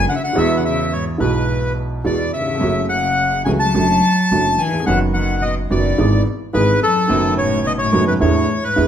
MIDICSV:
0, 0, Header, 1, 5, 480
1, 0, Start_track
1, 0, Tempo, 564972
1, 302, Time_signature, 4, 2, 24, 8
1, 3667, Tempo, 556070
1, 7602, End_track
2, 0, Start_track
2, 0, Title_t, "Bandoneon"
2, 0, Program_c, 0, 23
2, 78, Note_on_c, 0, 78, 74
2, 132, Note_off_c, 0, 78, 0
2, 133, Note_on_c, 0, 76, 61
2, 187, Note_off_c, 0, 76, 0
2, 205, Note_on_c, 0, 78, 82
2, 316, Note_off_c, 0, 78, 0
2, 318, Note_on_c, 0, 76, 88
2, 484, Note_on_c, 0, 78, 54
2, 493, Note_off_c, 0, 76, 0
2, 541, Note_off_c, 0, 78, 0
2, 553, Note_on_c, 0, 76, 73
2, 784, Note_on_c, 0, 73, 76
2, 791, Note_off_c, 0, 76, 0
2, 890, Note_off_c, 0, 73, 0
2, 1020, Note_on_c, 0, 71, 65
2, 1466, Note_off_c, 0, 71, 0
2, 1750, Note_on_c, 0, 74, 67
2, 1969, Note_off_c, 0, 74, 0
2, 1982, Note_on_c, 0, 76, 68
2, 2431, Note_off_c, 0, 76, 0
2, 2456, Note_on_c, 0, 78, 83
2, 2908, Note_off_c, 0, 78, 0
2, 2929, Note_on_c, 0, 80, 70
2, 2987, Note_off_c, 0, 80, 0
2, 3054, Note_on_c, 0, 81, 100
2, 3898, Note_on_c, 0, 80, 79
2, 3928, Note_off_c, 0, 81, 0
2, 4127, Note_off_c, 0, 80, 0
2, 4138, Note_on_c, 0, 78, 83
2, 4249, Note_off_c, 0, 78, 0
2, 4377, Note_on_c, 0, 78, 73
2, 4619, Note_on_c, 0, 75, 75
2, 4632, Note_off_c, 0, 78, 0
2, 4730, Note_off_c, 0, 75, 0
2, 4871, Note_on_c, 0, 74, 61
2, 5317, Note_off_c, 0, 74, 0
2, 5585, Note_on_c, 0, 71, 86
2, 5810, Note_off_c, 0, 71, 0
2, 5836, Note_on_c, 0, 69, 91
2, 6277, Note_off_c, 0, 69, 0
2, 6313, Note_on_c, 0, 73, 90
2, 6557, Note_off_c, 0, 73, 0
2, 6557, Note_on_c, 0, 75, 95
2, 6609, Note_off_c, 0, 75, 0
2, 6661, Note_on_c, 0, 73, 83
2, 6887, Note_off_c, 0, 73, 0
2, 6913, Note_on_c, 0, 71, 78
2, 6965, Note_off_c, 0, 71, 0
2, 7029, Note_on_c, 0, 73, 71
2, 7398, Note_off_c, 0, 73, 0
2, 7398, Note_on_c, 0, 71, 89
2, 7602, Note_off_c, 0, 71, 0
2, 7602, End_track
3, 0, Start_track
3, 0, Title_t, "Grand piano"
3, 0, Program_c, 1, 0
3, 283, Note_on_c, 1, 52, 64
3, 296, Note_off_c, 1, 52, 0
3, 296, Note_on_c, 1, 56, 55
3, 301, Note_on_c, 1, 52, 77
3, 302, Note_on_c, 1, 40, 80
3, 308, Note_on_c, 1, 59, 63
3, 319, Note_on_c, 1, 66, 70
3, 977, Note_off_c, 1, 56, 0
3, 980, Note_off_c, 1, 40, 0
3, 980, Note_off_c, 1, 52, 0
3, 983, Note_off_c, 1, 59, 0
3, 989, Note_off_c, 1, 66, 0
3, 1004, Note_on_c, 1, 52, 58
3, 1012, Note_on_c, 1, 56, 51
3, 1019, Note_on_c, 1, 47, 65
3, 1022, Note_on_c, 1, 35, 62
3, 1025, Note_on_c, 1, 59, 56
3, 1036, Note_on_c, 1, 66, 64
3, 1696, Note_off_c, 1, 52, 0
3, 1700, Note_off_c, 1, 56, 0
3, 1704, Note_off_c, 1, 47, 0
3, 1705, Note_off_c, 1, 35, 0
3, 1707, Note_off_c, 1, 59, 0
3, 1712, Note_off_c, 1, 66, 0
3, 1738, Note_on_c, 1, 52, 66
3, 1742, Note_on_c, 1, 56, 50
3, 1743, Note_on_c, 1, 40, 58
3, 1743, Note_on_c, 1, 59, 49
3, 1744, Note_on_c, 1, 66, 57
3, 1942, Note_off_c, 1, 52, 0
3, 1943, Note_off_c, 1, 40, 0
3, 1943, Note_off_c, 1, 56, 0
3, 1943, Note_off_c, 1, 59, 0
3, 1944, Note_off_c, 1, 66, 0
3, 2041, Note_on_c, 1, 39, 38
3, 2098, Note_on_c, 1, 40, 52
3, 2101, Note_off_c, 1, 39, 0
3, 2160, Note_off_c, 1, 40, 0
3, 2166, Note_on_c, 1, 41, 59
3, 2203, Note_on_c, 1, 49, 64
3, 2214, Note_on_c, 1, 54, 77
3, 2218, Note_on_c, 1, 42, 74
3, 2224, Note_off_c, 1, 41, 0
3, 2225, Note_on_c, 1, 57, 58
3, 2239, Note_on_c, 1, 66, 70
3, 2900, Note_off_c, 1, 49, 0
3, 2908, Note_off_c, 1, 42, 0
3, 2908, Note_off_c, 1, 54, 0
3, 2911, Note_off_c, 1, 57, 0
3, 2918, Note_off_c, 1, 66, 0
3, 2935, Note_on_c, 1, 49, 62
3, 2938, Note_on_c, 1, 54, 55
3, 2939, Note_on_c, 1, 37, 67
3, 2941, Note_on_c, 1, 57, 56
3, 2941, Note_on_c, 1, 66, 66
3, 3144, Note_off_c, 1, 49, 0
3, 3144, Note_off_c, 1, 54, 0
3, 3145, Note_off_c, 1, 37, 0
3, 3146, Note_off_c, 1, 57, 0
3, 3146, Note_off_c, 1, 66, 0
3, 3178, Note_on_c, 1, 50, 57
3, 3180, Note_on_c, 1, 54, 66
3, 3182, Note_on_c, 1, 42, 71
3, 3183, Note_on_c, 1, 57, 57
3, 3185, Note_on_c, 1, 66, 67
3, 3384, Note_off_c, 1, 50, 0
3, 3386, Note_off_c, 1, 42, 0
3, 3386, Note_off_c, 1, 54, 0
3, 3387, Note_off_c, 1, 57, 0
3, 3388, Note_off_c, 1, 66, 0
3, 3663, Note_on_c, 1, 50, 54
3, 3665, Note_on_c, 1, 54, 69
3, 3666, Note_on_c, 1, 42, 63
3, 3668, Note_on_c, 1, 57, 49
3, 3669, Note_on_c, 1, 66, 62
3, 3868, Note_off_c, 1, 50, 0
3, 3870, Note_off_c, 1, 42, 0
3, 3870, Note_off_c, 1, 54, 0
3, 3870, Note_off_c, 1, 57, 0
3, 3871, Note_off_c, 1, 66, 0
3, 3969, Note_on_c, 1, 39, 41
3, 4027, Note_on_c, 1, 40, 53
3, 4029, Note_off_c, 1, 39, 0
3, 4085, Note_on_c, 1, 41, 67
3, 4088, Note_off_c, 1, 40, 0
3, 4132, Note_on_c, 1, 51, 61
3, 4141, Note_on_c, 1, 54, 76
3, 4147, Note_off_c, 1, 41, 0
3, 4148, Note_on_c, 1, 42, 71
3, 4154, Note_on_c, 1, 59, 59
3, 4164, Note_on_c, 1, 66, 71
3, 4826, Note_off_c, 1, 51, 0
3, 4834, Note_off_c, 1, 54, 0
3, 4835, Note_off_c, 1, 42, 0
3, 4838, Note_off_c, 1, 59, 0
3, 4842, Note_off_c, 1, 66, 0
3, 4863, Note_on_c, 1, 51, 56
3, 4864, Note_on_c, 1, 54, 71
3, 4865, Note_on_c, 1, 42, 69
3, 4867, Note_on_c, 1, 59, 58
3, 4867, Note_on_c, 1, 66, 68
3, 5069, Note_off_c, 1, 51, 0
3, 5070, Note_off_c, 1, 42, 0
3, 5070, Note_off_c, 1, 54, 0
3, 5071, Note_off_c, 1, 59, 0
3, 5071, Note_off_c, 1, 66, 0
3, 5105, Note_on_c, 1, 52, 66
3, 5106, Note_on_c, 1, 44, 72
3, 5108, Note_on_c, 1, 56, 55
3, 5109, Note_on_c, 1, 32, 74
3, 5109, Note_on_c, 1, 59, 53
3, 5110, Note_on_c, 1, 68, 64
3, 5309, Note_off_c, 1, 52, 0
3, 5310, Note_off_c, 1, 44, 0
3, 5311, Note_off_c, 1, 32, 0
3, 5311, Note_off_c, 1, 56, 0
3, 5311, Note_off_c, 1, 59, 0
3, 5312, Note_off_c, 1, 68, 0
3, 5582, Note_on_c, 1, 52, 60
3, 5585, Note_on_c, 1, 32, 66
3, 5586, Note_on_c, 1, 44, 66
3, 5586, Note_on_c, 1, 56, 56
3, 5586, Note_on_c, 1, 59, 50
3, 5587, Note_on_c, 1, 68, 66
3, 5787, Note_off_c, 1, 52, 0
3, 5789, Note_off_c, 1, 32, 0
3, 5789, Note_off_c, 1, 44, 0
3, 5789, Note_off_c, 1, 56, 0
3, 5789, Note_off_c, 1, 59, 0
3, 5790, Note_off_c, 1, 68, 0
3, 6049, Note_on_c, 1, 51, 73
3, 6061, Note_on_c, 1, 57, 62
3, 6066, Note_on_c, 1, 42, 89
3, 6066, Note_on_c, 1, 54, 87
3, 6070, Note_on_c, 1, 59, 66
3, 6083, Note_on_c, 1, 66, 80
3, 6742, Note_off_c, 1, 51, 0
3, 6748, Note_off_c, 1, 57, 0
3, 6750, Note_off_c, 1, 42, 0
3, 6750, Note_off_c, 1, 54, 0
3, 6752, Note_off_c, 1, 59, 0
3, 6759, Note_off_c, 1, 66, 0
3, 6781, Note_on_c, 1, 57, 61
3, 6782, Note_on_c, 1, 42, 75
3, 6782, Note_on_c, 1, 51, 58
3, 6783, Note_on_c, 1, 59, 61
3, 6785, Note_on_c, 1, 54, 77
3, 6785, Note_on_c, 1, 66, 63
3, 6985, Note_off_c, 1, 42, 0
3, 6985, Note_off_c, 1, 51, 0
3, 6985, Note_off_c, 1, 57, 0
3, 6986, Note_off_c, 1, 59, 0
3, 6987, Note_off_c, 1, 54, 0
3, 6987, Note_off_c, 1, 66, 0
3, 7018, Note_on_c, 1, 50, 66
3, 7019, Note_on_c, 1, 57, 58
3, 7021, Note_on_c, 1, 40, 72
3, 7022, Note_on_c, 1, 52, 70
3, 7023, Note_on_c, 1, 59, 59
3, 7023, Note_on_c, 1, 64, 70
3, 7223, Note_off_c, 1, 50, 0
3, 7224, Note_off_c, 1, 57, 0
3, 7225, Note_off_c, 1, 40, 0
3, 7225, Note_off_c, 1, 52, 0
3, 7225, Note_off_c, 1, 64, 0
3, 7226, Note_off_c, 1, 59, 0
3, 7501, Note_on_c, 1, 50, 57
3, 7503, Note_on_c, 1, 56, 55
3, 7505, Note_on_c, 1, 52, 64
3, 7506, Note_on_c, 1, 40, 62
3, 7506, Note_on_c, 1, 59, 53
3, 7508, Note_on_c, 1, 64, 62
3, 7602, Note_off_c, 1, 40, 0
3, 7602, Note_off_c, 1, 50, 0
3, 7602, Note_off_c, 1, 52, 0
3, 7602, Note_off_c, 1, 56, 0
3, 7602, Note_off_c, 1, 59, 0
3, 7602, Note_off_c, 1, 64, 0
3, 7602, End_track
4, 0, Start_track
4, 0, Title_t, "Cello"
4, 0, Program_c, 2, 42
4, 86, Note_on_c, 2, 50, 59
4, 128, Note_off_c, 2, 50, 0
4, 133, Note_on_c, 2, 49, 50
4, 183, Note_off_c, 2, 49, 0
4, 199, Note_on_c, 2, 50, 64
4, 302, Note_off_c, 2, 50, 0
4, 328, Note_on_c, 2, 47, 71
4, 481, Note_off_c, 2, 47, 0
4, 497, Note_on_c, 2, 50, 46
4, 544, Note_off_c, 2, 50, 0
4, 560, Note_on_c, 2, 49, 61
4, 771, Note_off_c, 2, 49, 0
4, 798, Note_on_c, 2, 44, 64
4, 901, Note_off_c, 2, 44, 0
4, 1034, Note_on_c, 2, 44, 56
4, 1473, Note_off_c, 2, 44, 0
4, 1744, Note_on_c, 2, 47, 58
4, 1966, Note_off_c, 2, 47, 0
4, 1986, Note_on_c, 2, 49, 56
4, 2433, Note_off_c, 2, 49, 0
4, 2458, Note_on_c, 2, 49, 70
4, 2909, Note_off_c, 2, 49, 0
4, 2942, Note_on_c, 2, 52, 68
4, 2997, Note_off_c, 2, 52, 0
4, 3062, Note_on_c, 2, 54, 84
4, 3872, Note_off_c, 2, 54, 0
4, 3903, Note_on_c, 2, 52, 64
4, 4130, Note_off_c, 2, 52, 0
4, 4141, Note_on_c, 2, 51, 66
4, 4251, Note_off_c, 2, 51, 0
4, 4377, Note_on_c, 2, 51, 67
4, 4607, Note_off_c, 2, 51, 0
4, 4624, Note_on_c, 2, 47, 63
4, 4734, Note_off_c, 2, 47, 0
4, 4867, Note_on_c, 2, 47, 54
4, 5315, Note_off_c, 2, 47, 0
4, 5585, Note_on_c, 2, 44, 68
4, 5810, Note_off_c, 2, 44, 0
4, 5828, Note_on_c, 2, 42, 69
4, 6273, Note_off_c, 2, 42, 0
4, 6312, Note_on_c, 2, 45, 74
4, 6533, Note_off_c, 2, 45, 0
4, 6551, Note_on_c, 2, 47, 74
4, 6604, Note_off_c, 2, 47, 0
4, 6677, Note_on_c, 2, 45, 70
4, 6895, Note_off_c, 2, 45, 0
4, 6915, Note_on_c, 2, 44, 70
4, 6967, Note_off_c, 2, 44, 0
4, 7031, Note_on_c, 2, 45, 66
4, 7363, Note_off_c, 2, 45, 0
4, 7390, Note_on_c, 2, 44, 64
4, 7602, Note_off_c, 2, 44, 0
4, 7602, End_track
5, 0, Start_track
5, 0, Title_t, "Upright bass"
5, 0, Program_c, 3, 32
5, 311, Note_on_c, 3, 40, 87
5, 985, Note_off_c, 3, 40, 0
5, 1023, Note_on_c, 3, 35, 79
5, 1706, Note_off_c, 3, 35, 0
5, 1740, Note_on_c, 3, 40, 76
5, 1942, Note_off_c, 3, 40, 0
5, 2226, Note_on_c, 3, 30, 80
5, 2912, Note_off_c, 3, 30, 0
5, 2948, Note_on_c, 3, 37, 79
5, 3149, Note_off_c, 3, 37, 0
5, 3188, Note_on_c, 3, 30, 84
5, 3389, Note_off_c, 3, 30, 0
5, 3665, Note_on_c, 3, 30, 81
5, 3869, Note_off_c, 3, 30, 0
5, 4151, Note_on_c, 3, 30, 79
5, 4836, Note_off_c, 3, 30, 0
5, 4872, Note_on_c, 3, 30, 80
5, 5073, Note_off_c, 3, 30, 0
5, 5110, Note_on_c, 3, 32, 77
5, 5312, Note_off_c, 3, 32, 0
5, 5592, Note_on_c, 3, 32, 88
5, 5792, Note_off_c, 3, 32, 0
5, 6071, Note_on_c, 3, 30, 85
5, 6752, Note_off_c, 3, 30, 0
5, 6795, Note_on_c, 3, 30, 89
5, 6992, Note_off_c, 3, 30, 0
5, 7035, Note_on_c, 3, 40, 88
5, 7231, Note_off_c, 3, 40, 0
5, 7518, Note_on_c, 3, 40, 90
5, 7602, Note_off_c, 3, 40, 0
5, 7602, End_track
0, 0, End_of_file